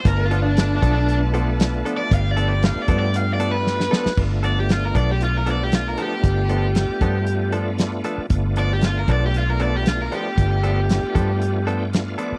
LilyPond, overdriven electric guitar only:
\new Staff \with { instrumentName = "Overdriven electric guitar" } { \time 4/4 \key g \mixolydian \tempo 4 = 116 \tuplet 3/2 { bes'8 f'8 d'8 d'8 d'8 d'8 } r4 \tuplet 3/2 { r4 d''8 } | \tuplet 3/2 { f''8 d''8 d''8 f''8 d''8 d''8 f''8 d''8 b'8~ } b'4 | r8 d''16 g'16 f'16 bes'16 d''16 g'16 f'16 bes'16 d''16 g'16 f'16 bes'16 g'8~ | g'2~ g'8 r4. |
r8 d''16 g'16 f'16 bes'16 d''16 g'16 f'16 bes'16 d''16 g'16 f'16 bes'16 g'8~ | g'2~ g'8 r4. | }